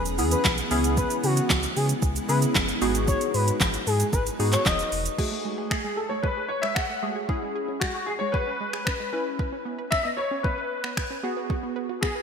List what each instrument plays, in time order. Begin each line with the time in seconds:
Already playing: sub bass E1, ambient pad B3 C#4
0.05 closed hi-hat, shaker
0.18 sub bass E2, synth keys B3 C#4 E4 G#4, open hi-hat, shaker
0.31 analog synth lead B4, closed hi-hat, shaker
0.44 sub bass B1, kick, snare, clap, shaker
0.58 closed hi-hat, shaker
0.71 sub bass C#2, ambient pad C#3 G#3 E4, synth keys B3 C#4 E4 G#4, open hi-hat, shaker
0.84 closed hi-hat, shaker
0.97 analog synth lead B4, kick, shaker
1.10 closed hi-hat, shaker
1.24 sub bass C#3, analog synth lead F#4, open hi-hat, shaker
1.36 closed hi-hat, shaker
1.50 sub bass C#2, kick, snare, clap, shaker
1.63 closed hi-hat, shaker
1.76 sub bass C#3, analog synth lead G#4, open hi-hat, shaker
1.89 closed hi-hat, shaker
2.02 sub bass C#2, kick, shaker
2.15 closed hi-hat, shaker
2.28 sub bass C#3, synth keys B3 C#4 E4 G#4, analog synth lead B4, open hi-hat, shaker
2.42 closed hi-hat, shaker
2.55 sub bass F#1, kick, snare, clap, shaker
2.68 closed hi-hat, shaker
2.81 sub bass G#1, synth keys B3 D#4 F#4 G#4, ambient pad D#4 F#4 B4, open hi-hat, shaker
2.95 closed hi-hat, shaker
3.08 analog synth lead C#5, kick, shaker
3.21 closed hi-hat, shaker
3.34 sub bass G#2, analog synth lead B4, open hi-hat, shaker
3.47 closed hi-hat, shaker
3.60 sub bass G#1, kick, snare, clap, shaker
3.73 closed hi-hat, shaker
3.87 sub bass G#2, analog synth lead G#4, open hi-hat, shaker
4.00 closed hi-hat, shaker
4.13 sub bass G#1, analog synth lead B4, kick, shaker
4.26 closed hi-hat, shaker
4.39 sub bass G#2, synth keys B3 D#4 F#4 G#4, open hi-hat, shaker
4.52 analog synth lead C#5, clap, closed hi-hat, shaker
4.66 sub bass D#1, analog synth lead D#5, kick, snare, clap, shaker
4.79 closed hi-hat, shaker
4.92 sub bass E1, open hi-hat, shaker
5.06 closed hi-hat, shaker
5.18 synth keys A3 F#4 G#4, synth pluck G#4, kick, crash
5.32 synth pluck A3
5.45 synth pluck G#3
5.58 synth pluck G#4
5.70 synth pluck A3, grand piano G#4, finger snap, kick
5.84 synth pluck G#3
5.96 synth pluck G#4, grand piano A4
6.09 synth pluck A3, grand piano C#5
6.23 synth pluck G#3, grand piano B4, kick
6.37 synth pluck G#4
6.48 grand piano C#5
6.62 synth pluck G#3, grand piano E5, finger snap
6.75 synth pluck G#4, grand piano F#5, finger snap, kick
6.90 synth pluck A3
7.02 synth pluck G#3, synth keys A3 F#4 G#4
7.16 synth pluck G#4
7.29 synth keys C#4 E4 G#4, synth pluck C#4, kick
7.42 synth pluck G#3
7.55 synth pluck G#4
7.68 synth pluck C#4
7.80 synth pluck G#3, grand piano F#4, finger snap, kick
7.95 synth pluck G#4
8.06 grand piano G#4
8.19 synth pluck G#3, grand piano C#5
8.32 synth pluck G#4, grand piano B4, kick
8.47 synth pluck C#4
8.61 synth pluck G#3
8.73 synth pluck G#4, finger snap
8.85 synth pluck C#4, grand piano B4, finger snap, kick
9.00 synth pluck G#3
9.13 synth keys C#4 E4 B4, synth pluck B4
9.39 synth pluck B4, kick
9.52 synth pluck C#4
9.65 synth pluck B3
9.79 synth pluck B4
9.91 synth pluck C#4, grand piano E5, finger snap, kick
10.03 synth pluck B3, grand piano D#5
10.17 synth pluck B4, grand piano C#5
10.31 synth pluck C#4
10.43 synth pluck B3, grand piano B4, kick
10.58 synth pluck B4
10.84 synth pluck B3, finger snap
10.97 synth pluck B4, finger snap, kick
11.10 synth pluck C#4
11.23 synth pluck B3, synth keys B3 F#4 G#4
11.37 synth pluck B4
11.50 synth pluck F#4, kick
11.63 synth pluck B3
11.76 synth pluck B4
11.89 synth pluck F#4
12.01 synth pluck B3, grand piano G#4, finger snap, kick
12.15 synth pluck B4